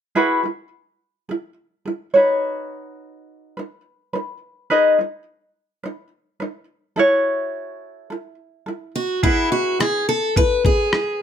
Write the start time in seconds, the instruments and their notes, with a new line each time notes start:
0.15 ukulele E4 F#4 G#4 B4
0.43 ukulele E4 G#4
1.29 ukulele E4 G#4
1.86 ukulele E4 G#4
2.14 ukulele D#4 F#4 B4 C#5
3.57 ukulele D#4 B4
4.13 ukulele D#4 B4
4.70 ukulele D#4 G#4 B4 D#5
4.99 ukulele D#4 B4
5.83 ukulele D#4 B4
6.40 ukulele D#4 B4
6.96 ukulele E4 F#4 A4 C#5
8.10 ukulele E4 A4
8.66 ukulele E4 A4
8.96 steel-string acoustic guitar F#4
9.23 ukulele E4 F#4 G#4 B4, steel-string acoustic guitar E4, kick
9.52 steel-string acoustic guitar F#4
9.79 ukulele E4 G#4, steel-string acoustic guitar G#4, cross-stick
10.09 steel-string acoustic guitar A4
10.36 ukulele E4 G#4, steel-string acoustic guitar B4, kick
10.64 ukulele E4 G#4, steel-string acoustic guitar G#4, kick
10.92 ukulele E4 G#4, cross-stick